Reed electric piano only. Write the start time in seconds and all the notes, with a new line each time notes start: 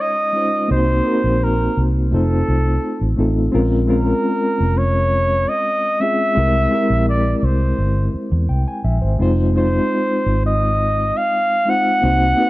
Already playing: G#3 C#4 D#4 F4 C5
0.33 G#3 C#4 D#4 F4
0.37 C5
0.68 A#3 C4 D#4 F#4 C5
1.03 A#3 C4 D#4 F#4 A#4
1.14 C5
2.10 A3 C4 D#4 F4 C5
3.16 A3 C4 D#4 F4 A4
3.52 G#3 C4 C#4 F4 A#4
3.87 G#3 C4 C#4 F4 A#4
6.00 G#3 C4 C#4 F4 G#4
6.35 G#3 C4 E4 G4 A#4
6.71 G#3 C4 E4 G4 A#4
8.49 G5
8.68 G#5
8.84 E5
9.02 C5
9.19 G#3 C4 D#4 F4 C5
9.53 G#3 C4 D#4 F4 C5
11.65 G#3 C4 D#4 F4 C5
12.01 A#3 C4 D#4 F#4
12.05 C5
12.36 A#3 C4 D#4 F#4 B4
12.47 C5